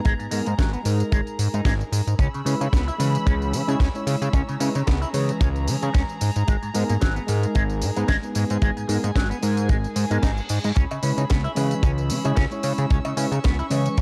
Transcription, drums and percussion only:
0.05 kick, closed hi-hat, tambourine
0.20 closed hi-hat, tambourine
0.31 open hi-hat, tambourine
0.46 closed hi-hat, tambourine
0.59 kick, snare, closed hi-hat, tambourine
0.73 closed hi-hat, tambourine
0.85 open hi-hat, tambourine
1.00 closed hi-hat, tambourine
1.12 kick, closed hi-hat, tambourine
1.27 closed hi-hat, tambourine
1.39 open hi-hat, tambourine
1.54 closed hi-hat, tambourine
1.65 kick, snare, closed hi-hat, tambourine
1.81 closed hi-hat, tambourine
1.93 open hi-hat, tambourine
2.07 closed hi-hat, tambourine
2.19 kick, closed hi-hat, tambourine
2.34 closed hi-hat, tambourine
2.46 open hi-hat, tambourine
2.61 closed hi-hat, tambourine
2.73 kick, snare, closed hi-hat, tambourine
2.88 closed hi-hat, tambourine
3.00 open hi-hat, tambourine
3.15 closed hi-hat, tambourine
3.27 kick, closed hi-hat, tambourine
3.42 closed hi-hat, tambourine
3.53 open hi-hat, tambourine
3.69 closed hi-hat, tambourine
3.80 kick, snare, closed hi-hat, tambourine
3.95 closed hi-hat, tambourine
4.07 open hi-hat, tambourine
4.22 closed hi-hat, tambourine
4.33 kick, closed hi-hat, tambourine
4.49 closed hi-hat, tambourine
4.60 open hi-hat, tambourine
4.75 closed hi-hat, tambourine
4.87 kick, snare, closed hi-hat, tambourine
5.02 closed hi-hat, tambourine
5.14 open hi-hat, tambourine
5.29 closed hi-hat, tambourine
5.41 kick, closed hi-hat, tambourine
5.56 closed hi-hat, tambourine
5.68 open hi-hat, tambourine
5.83 closed hi-hat, tambourine
5.94 kick, snare, closed hi-hat, tambourine
6.09 closed hi-hat, tambourine
6.21 open hi-hat, tambourine
6.36 closed hi-hat, tambourine
6.48 kick, closed hi-hat, tambourine
6.63 closed hi-hat, tambourine
6.75 open hi-hat, tambourine
6.89 closed hi-hat, tambourine
7.01 kick, snare, closed hi-hat, tambourine
7.16 closed hi-hat, tambourine
7.28 open hi-hat, tambourine
7.43 closed hi-hat, tambourine
7.55 kick, closed hi-hat, tambourine
7.70 closed hi-hat, tambourine
7.82 open hi-hat, tambourine
7.97 closed hi-hat, tambourine
8.08 kick, snare, closed hi-hat, tambourine
8.23 closed hi-hat, tambourine
8.35 open hi-hat, tambourine
8.50 closed hi-hat, tambourine
8.62 kick, closed hi-hat, tambourine
8.77 closed hi-hat, tambourine
8.89 open hi-hat, tambourine
9.04 closed hi-hat, tambourine
9.16 kick, snare, closed hi-hat, tambourine
9.31 closed hi-hat, tambourine
9.43 open hi-hat, tambourine
9.57 closed hi-hat, tambourine
9.69 kick, closed hi-hat, tambourine
9.84 closed hi-hat, tambourine
9.96 open hi-hat, tambourine
10.11 closed hi-hat, tambourine
10.23 kick, snare, closed hi-hat, tambourine
10.37 closed hi-hat, tambourine
10.49 open hi-hat, tambourine
10.64 closed hi-hat, tambourine
10.76 kick, closed hi-hat, tambourine
10.91 closed hi-hat, tambourine, cowbell
11.03 open hi-hat, tambourine
11.18 closed hi-hat, tambourine
11.30 kick, snare, closed hi-hat, tambourine
11.44 closed hi-hat, tambourine
11.56 open hi-hat, tambourine, cowbell
11.71 closed hi-hat, tambourine
11.83 kick, closed hi-hat, tambourine
11.98 closed hi-hat, tambourine
12.10 open hi-hat, tambourine
12.25 closed hi-hat, tambourine, cowbell
12.37 kick, snare, closed hi-hat, tambourine
12.51 closed hi-hat, tambourine
12.63 open hi-hat, tambourine
12.78 closed hi-hat, tambourine
12.90 kick, closed hi-hat, tambourine
13.05 closed hi-hat, tambourine, cowbell
13.17 open hi-hat, tambourine
13.32 closed hi-hat, tambourine
13.44 kick, snare, closed hi-hat, tambourine
13.59 closed hi-hat, tambourine
13.71 open hi-hat, tambourine, cowbell
13.86 closed hi-hat, tambourine
13.98 kick, closed hi-hat, tambourine

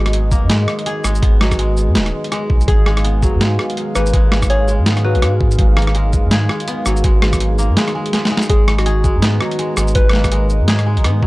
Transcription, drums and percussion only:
0.06 cross-stick, closed hi-hat
0.13 closed hi-hat
0.31 kick, shaker
0.50 snare, closed hi-hat
0.68 cross-stick
0.79 closed hi-hat
0.86 closed hi-hat
1.04 cross-stick, shaker
1.15 shaker
1.23 kick, closed hi-hat
1.41 cross-stick, snare
1.51 kick, cross-stick, closed hi-hat, shaker
1.59 closed hi-hat
1.77 shaker
1.95 snare, closed hi-hat
2.06 cross-stick, closed hi-hat
2.24 closed hi-hat
2.32 cross-stick, closed hi-hat
2.50 kick
2.61 shaker
2.68 kick, closed hi-hat
2.86 cross-stick
2.97 cross-stick, closed hi-hat
3.05 closed hi-hat
3.23 kick, shaker
3.41 snare, closed hi-hat
3.59 cross-stick
3.70 closed hi-hat
3.77 closed hi-hat
3.95 cross-stick, shaker
4.06 shaker
4.14 kick, closed hi-hat
4.32 cross-stick, snare
4.42 kick, cross-stick, closed hi-hat, shaker
4.50 closed hi-hat
4.68 shaker
4.86 snare, closed hi-hat
4.97 cross-stick, closed hi-hat
5.15 closed hi-hat
5.22 cross-stick, closed hi-hat
5.41 kick
5.51 shaker
5.59 kick, closed hi-hat
5.77 cross-stick
5.82 closed hi-hat
5.87 cross-stick
5.95 closed hi-hat
6.13 kick, shaker
6.31 snare, closed hi-hat
6.49 cross-stick
6.60 closed hi-hat
6.68 closed hi-hat
6.86 cross-stick, shaker
6.97 shaker
7.04 kick, closed hi-hat
7.22 cross-stick, snare
7.33 kick, cross-stick, closed hi-hat, shaker
7.40 closed hi-hat
7.59 shaker
7.77 snare, closed hi-hat
7.88 cross-stick, closed hi-hat
8.06 closed hi-hat
8.13 snare, closed hi-hat
8.25 snare
8.37 snare
8.42 shaker
8.50 kick, closed hi-hat
8.68 cross-stick
8.78 cross-stick, closed hi-hat
8.86 closed hi-hat
9.04 kick, shaker
9.22 snare, closed hi-hat
9.41 cross-stick
9.51 closed hi-hat
9.59 closed hi-hat
9.77 cross-stick, shaker
9.88 shaker
9.95 kick, closed hi-hat
10.09 cross-stick, snare
10.24 kick, cross-stick, closed hi-hat, shaker
10.32 closed hi-hat
10.50 shaker
10.68 snare, closed hi-hat
10.79 cross-stick, closed hi-hat
10.97 closed hi-hat
11.04 cross-stick, closed hi-hat
11.23 kick

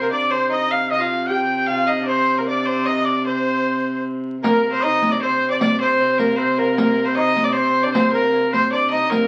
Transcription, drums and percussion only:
4.44 riq
5.02 riq
5.61 riq
6.19 riq
6.78 riq
7.36 riq
7.95 riq
8.14 riq
8.34 riq
8.54 riq
8.92 riq
9.12 riq

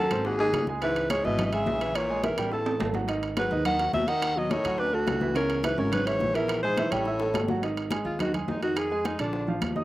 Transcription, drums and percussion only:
0.11 high bongo, high conga, high timbale
0.25 high bongo, high conga
0.40 high bongo, high conga
0.53 high bongo, low bongo, high conga, high timbale, low timbale
0.67 high conga
0.82 high bongo, high conga, high timbale
0.96 high bongo, high conga, high timbale
1.10 high bongo, high conga, high timbale
1.24 high bongo, high conga
1.38 high bongo, high conga, low conga, high timbale
1.52 high bongo, high conga, high timbale
1.66 high bongo, low bongo, high conga, low timbale
1.81 high conga, high timbale
1.95 high bongo, high conga, high timbale
2.09 high bongo, high conga
2.24 high bongo, high conga, high timbale
2.38 high bongo, high conga, high timbale
2.52 high bongo, high conga
2.65 high bongo, high conga, high timbale
2.80 high bongo, low bongo, high conga, low timbale
2.94 high conga, low timbale
3.08 high bongo, high conga, high timbale
3.22 high bongo, high conga, high timbale
3.37 high bongo, high conga, high timbale
3.51 high bongo, high conga
3.65 high bongo, high conga, low conga, high timbale
3.79 high bongo, high conga, high timbale
3.93 high bongo, low bongo, high conga, low timbale
4.07 high conga, high timbale
4.22 high bongo, high conga, high timbale
4.36 high bongo, high conga
4.50 high bongo, high conga, high timbale
4.64 high bongo, high conga, high timbale
4.78 high bongo, high conga
4.93 high bongo, high conga
5.07 high bongo, low bongo, high conga, high timbale, low timbale
5.21 high conga
5.35 high bongo, high conga, high timbale
5.49 high bongo, high conga, high timbale
5.63 high bongo, high conga, high timbale
5.78 high bongo, high conga
5.92 high bongo, high conga, low conga, high timbale
6.06 high bongo, high conga, high timbale
6.20 high bongo, low bongo, high conga
6.35 high conga, high timbale
6.48 high bongo, high conga, high timbale
6.63 high bongo, high conga
6.77 high bongo, high conga, high timbale
6.91 high bongo, high conga, high timbale
7.05 high bongo, high conga
7.20 high bongo, high conga
7.34 low bongo, high conga, high timbale
7.48 low bongo, high conga
7.62 high bongo, high conga, high timbale
7.76 high bongo, high conga, high timbale
7.91 high bongo, high conga, high timbale
8.05 high bongo, high conga
8.19 high bongo, high conga, low conga, high timbale
8.34 high bongo, high conga, low conga, high timbale
8.48 high bongo, low bongo, high conga, low timbale
8.63 high conga, high timbale
8.76 high bongo, high conga, high timbale
8.90 high bongo, high conga
9.05 high bongo, high conga, high timbale
9.19 high bongo, high conga, high timbale
9.33 high bongo, high conga
9.47 high bongo, high conga
9.61 high bongo, low bongo, high conga, high timbale, low timbale
9.76 high conga

